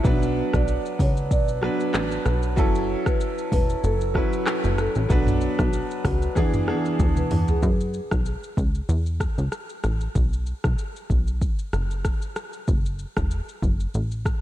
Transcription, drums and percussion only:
0.05 kick, shaker
0.23 shaker
0.54 kick, cross-stick, shaker
0.68 shaker
0.86 shaker
0.99 kick, open hi-hat, shaker
1.17 shaker
1.31 kick, shaker
1.48 shaker
1.63 cross-stick
1.80 shaker
1.94 cross-stick, clap, shaker
2.11 shaker
2.25 cross-stick, shaker
2.43 shaker
2.57 kick, shaker
2.75 shaker
3.06 kick, cross-stick, shaker
3.20 shaker
3.38 shaker
3.52 kick, open hi-hat, shaker
3.69 shaker
3.84 shaker
4.01 shaker
4.15 kick, cross-stick
4.33 shaker
4.47 cross-stick, clap, shaker
4.64 shaker
4.78 cross-stick, shaker
4.95 shaker
5.10 kick, shaker
5.27 mid tom, shaker
5.41 shaker
5.59 kick, cross-stick, shaker
5.73 shaker
5.91 shaker
6.05 kick, cross-stick, open hi-hat, shaker
6.22 shaker
6.36 kick, shaker
6.53 mid tom, shaker
6.68 cross-stick
6.85 shaker
6.99 kick, high tom, shaker
7.17 mid tom, shaker
7.31 mid tom, open hi-hat
7.48 floor tom, shaker
7.63 kick, shaker
7.80 shaker
7.94 shaker
8.11 kick, cross-stick, shaker
8.26 shaker
8.43 shaker
8.57 kick, shaker
8.75 shaker
8.89 shaker
9.06 shaker
9.20 kick, cross-stick, shaker
9.38 shaker
9.52 cross-stick, shaker
9.69 shaker
9.84 cross-stick, shaker
10.01 shaker
10.15 kick, shaker
10.33 shaker
10.46 shaker
10.64 kick, cross-stick, shaker
10.78 shaker
10.96 shaker
11.10 kick, shaker
11.27 shaker
11.42 kick, shaker
11.59 shaker
11.73 cross-stick, shaker
11.91 shaker
12.05 kick, cross-stick, shaker
12.22 shaker
12.36 cross-stick, shaker
12.53 shaker
12.68 kick, shaker
12.86 shaker
12.99 shaker
13.17 kick, cross-stick, shaker
13.31 shaker
13.49 shaker
13.62 kick, shaker
13.80 shaker
13.94 shaker
14.11 shaker
14.25 kick, cross-stick, shaker

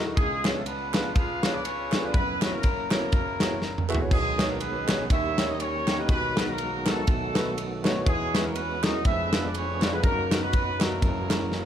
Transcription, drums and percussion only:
0.17 kick, ride bell
0.45 snare, clap, ride bell
0.66 ride bell
0.94 snare, clap, ride bell
1.15 kick, ride bell
1.43 snare, clap, ride bell
1.65 ride bell
1.92 snare, clap, ride bell
2.14 kick, ride bell
2.42 snare, clap, ride bell
2.63 kick, ride bell
2.91 snare, clap, ride bell
3.12 kick, ride bell
3.40 snare, clap, ride bell
3.62 snare
3.78 mid tom
3.89 clap
3.94 floor tom
4.11 kick, crash
4.39 snare, clap, ride bell
4.60 ride bell
4.88 snare, clap, ride bell
5.10 kick, ride bell
5.38 snare, clap, ride bell
5.60 ride bell
5.88 snare, clap, ride bell
6.09 kick, ride bell
6.37 snare, clap, ride bell
6.58 ride bell
6.86 snare, clap, ride bell
7.07 kick, ride bell
7.35 snare, clap, ride bell
7.58 ride bell
7.85 snare, clap, ride bell
8.06 kick, ride bell
8.35 snare, clap, ride bell
8.55 ride bell
8.83 snare, clap, ride bell
9.05 kick, ride bell
9.33 snare, clap, ride bell
9.54 ride bell
9.82 snare, clap, ride bell
10.03 kick, ride bell
10.32 snare, clap, ride bell
10.53 kick, ride bell
10.81 snare, clap, ride bell
11.02 kick, ride bell
11.30 snare, clap, ride bell
11.52 snare

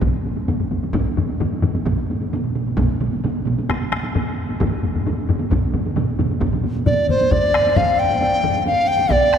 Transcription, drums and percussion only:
0.02 taiko, taiko low-mid, taiko high
0.25 taiko high
0.37 taiko high
0.48 taiko low-mid, taiko high
0.60 taiko low-mid
0.71 taiko low-mid, taiko high
0.83 taiko low-mid, taiko high
0.93 taiko, taiko low-mid, taiko high
1.17 taiko low-mid, taiko high
1.29 taiko high
1.40 taiko low-mid, taiko high
1.63 taiko low-mid, taiko high
1.75 taiko high
1.86 taiko, taiko mid, taiko high
2.10 taiko high
2.22 taiko high
2.32 taiko mid, taiko high
2.44 taiko mid
2.55 taiko mid, taiko high
2.67 taiko mid
2.77 taiko, taiko mid, taiko high
3.01 taiko mid, taiko high
3.13 taiko high
3.24 taiko mid, taiko high
3.47 taiko mid, taiko high
3.59 taiko high
3.69 taiko rim, taiko, taiko high
3.92 taiko rim, taiko high
4.04 taiko high
4.15 taiko low-mid, taiko high
4.50 taiko high
4.60 taiko, taiko low-mid, taiko high
4.83 taiko low-mid, taiko high
4.95 taiko low-mid, taiko high
5.06 taiko low-mid, taiko high
5.29 taiko low-mid, taiko high
5.40 taiko high
5.51 taiko, taiko low-mid, taiko mid, taiko high
5.74 taiko low-mid, taiko mid, taiko high
5.86 taiko high
5.96 taiko low-mid, taiko mid, taiko high
6.19 taiko low-mid, taiko mid, taiko high
6.30 taiko high
6.40 taiko, taiko low-mid, taiko mid, taiko high
6.53 taiko low-mid, taiko mid
6.63 taiko low-mid, taiko mid, taiko high
6.76 taiko high
6.86 taiko low-mid, taiko mid, taiko high
7.09 taiko low-mid, taiko mid, taiko high
7.21 taiko high
7.31 taiko, taiko low-mid, taiko high
7.54 taiko rim
7.66 taiko high
7.76 taiko low-mid, taiko high
8.10 taiko high
8.21 taiko high
8.43 taiko low-mid, taiko high
8.55 taiko high
8.66 taiko high
8.99 taiko high
9.10 taiko, taiko mid, taiko high
9.33 taiko rim

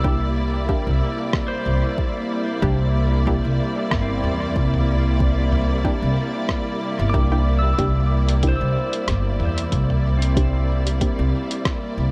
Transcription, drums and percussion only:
0.04 kick
0.69 kick
1.33 kick, cross-stick
1.98 kick
2.62 kick
3.27 kick
3.91 kick, cross-stick
4.24 mid tom
4.56 kick
4.74 mid tom
5.20 kick
5.52 mid tom
5.85 kick
6.49 kick, cross-stick
7.14 kick
7.79 kick, closed hi-hat
8.29 closed hi-hat
8.43 kick, closed hi-hat
8.93 closed hi-hat
9.08 kick, cross-stick, closed hi-hat
9.40 mid tom
9.58 closed hi-hat
9.72 kick, closed hi-hat
9.90 mid tom
10.22 closed hi-hat
10.37 kick, closed hi-hat
10.87 closed hi-hat
11.01 kick, closed hi-hat
11.51 closed hi-hat
11.65 kick, cross-stick, closed hi-hat

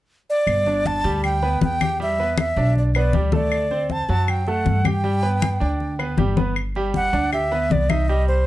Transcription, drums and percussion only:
0.47 high conga, claves
0.66 high conga
0.85 high conga
1.04 high conga
1.24 high conga, claves
1.42 high conga
1.61 high conga
1.81 high conga, claves
2.00 high conga
2.18 high conga
2.38 high conga, claves
2.56 high conga
2.76 high conga
2.94 high conga, claves
3.13 high conga
3.32 high conga
3.52 high conga, claves
3.71 high conga
3.90 high conga
4.08 high conga
4.28 high conga, claves
4.47 high conga
4.66 high conga
4.85 high conga, claves
5.04 high conga
5.23 high conga
5.42 high conga, claves
5.62 high conga
5.80 high conga
5.99 high conga, claves
6.18 high conga
6.37 high conga
6.56 high conga, claves
6.75 high conga
6.94 high conga
7.14 high conga
7.33 high conga, claves
7.52 high conga
7.71 high conga
7.90 high conga, claves
8.09 high conga
8.29 high conga

